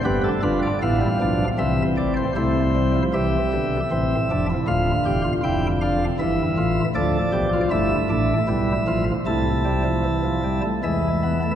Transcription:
<<
  \new Staff \with { instrumentName = "Pipe organ" } { \time 3/4 \key c \mixolydian \tempo 4 = 78 << { b'16 a'16 b'16 d''16 f''4 e''8 d''16 c''16 | c''4 e''2 | f''4 g''8 f''8 e''4 | \key a \minor d''4 e''2 |
a''2 e''4 | } \\ { g'8 f'8 e'8 d'8 c'4 | e'4 g'4 c'8 d'16 e'16 | f'8 g'16 f'16 e'8 d'8 e'8 f'8 | a'8 g'16 f'16 e'8 d'8 e'8 f'8 |
e'2 e'4 | } >> }
  \new Staff \with { instrumentName = "Pipe organ" } { \clef bass \time 3/4 \key c \mixolydian << { b8 d'8 b16 g16 f8 e4 | a8 g16 f16 e8 d8 e8 f8 | d2 e4 | \key a \minor f4 a4 g8 f8 |
a8 g16 f16 e16 f16 g16 a16 gis8 b16 a16 | } \\ { <g,, g,>8 <g,, g,>8 <a,, a,>8 <b,, b,>8 <c, c>8 <a,, a,>8 | <c, c>4 <c, c>8 <b,, b,>8 <a,, a,>8 <f,, f,>8 | <d,, d,>8 <e,, e,>8 <f,, f,>4 <g,, g,>8 <a,, a,>8 | <d, d>8 <b,, b,>8 <g,, g,>8 <a,, a,>8 <b,, b,>8 <a,, a,>8 |
<c, c>2 <e, e>4 | } >> }
>>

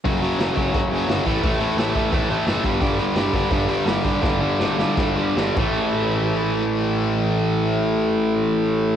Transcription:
<<
  \new Staff \with { instrumentName = "Distorted electric guitar" } { \clef bass \time 4/4 \key a \mixolydian \tempo 4 = 165 <fis, cis fis>8 <fis, cis fis>8 <fis, cis fis>8 <fis, cis fis>8 <fis, cis fis>8 <fis, cis fis>8 <fis, cis fis>8 <a, e a>8 | <a, e a>8 <a, e a>8 <a, e a>8 <a, e a>8 <a, e a>8 <a, e a>8 <a, e a>8 <g, d g>8 | <g, d g>8 <g, d g>8 <g, d g>8 <g, d g>8 <g, d g>8 <g, d g>8 <g, d g>8 <g, d g>8 | <g, d g>8 <g, d g>8 <g, d g>8 <g, d g>8 <g, d g>8 <g, d g>8 <g, d g>8 <a, e a>8~ |
<a, e a>1~ | <a, e a>1 | }
  \new Staff \with { instrumentName = "Distorted electric guitar" } { \clef bass \time 4/4 \key a \mixolydian <fis, cis fis>8 <fis, cis fis>8 <fis, cis fis>8 <fis, cis fis>8 <fis, cis fis>8 <fis, cis fis>8 <fis, cis fis>8 <a, e a>8 | <a, e a>8 <a, e a>8 <a, e a>8 <a, e a>8 <a, e a>8 <a, e a>8 <a, e a>8 <g, d g>8 | <g, d g>8 <g, d g>8 <g, d g>8 <g, d g>8 <g, d g>8 <g, d g>8 <g, d g>8 <g, d g>8 | <g, d g>8 <g, d g>8 <g, d g>8 <g, d g>8 <g, d g>8 <g, d g>8 <g, d g>8 <a, e a>8~ |
<a, e a>1~ | <a, e a>1 | }
  \new Staff \with { instrumentName = "Picked electric bass" } { \clef bass \time 4/4 \key a \mixolydian fis,,4 fis,,8 fis,,8 fis,,4 g,,8 a,,8 | a,,4 a,,4 a,,4 fis,,8 g,,8 | g,,4 g,,8 g,,8 g,,4 g,,8 g,,8 | g,,4 g,,4 g,,4 g,,8 a,,8~ |
a,,1~ | a,,1 | }
  \new DrumStaff \with { instrumentName = "Drums" } \drummode { \time 4/4 <hho bd>8 hho8 <hho sn>8 <hho bd>8 <hho bd>8 hho8 <hho sn>8 <hho bd>8 | <hho bd>8 hho8 <hho sn>8 <hho bd>8 <hho bd>8 hho8 <hho sn>8 <hho bd>8 | <hho bd>8 hho8 <hho sn>8 <hho bd>8 <hho bd>8 hho8 <hho sn>8 <hho bd>8 | <bd sn>4 sn8 sn8 <bd sn>4 sn8 <cymc bd>8 |
r4 r4 r4 r4 | r4 r4 r4 r4 | }
>>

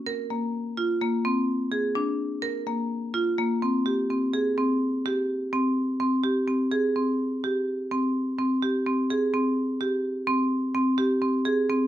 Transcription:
\new Staff \with { instrumentName = "Marimba" } { \time 5/8 \key c \minor \tempo 4 = 127 bes'8 bes4 f'8 bes8 | c'4 aes'8 d'4 | bes'8 bes4 f'8 bes8 | c'8 g'8 c'8 aes'8 c'8~ |
c'8 g'4 c'4 | c'8 g'8 c'8 aes'8 c'8~ | c'8 g'4 c'4 | c'8 g'8 c'8 aes'8 c'8~ |
c'8 g'4 c'4 | c'8 g'8 c'8 aes'8 c'8 | }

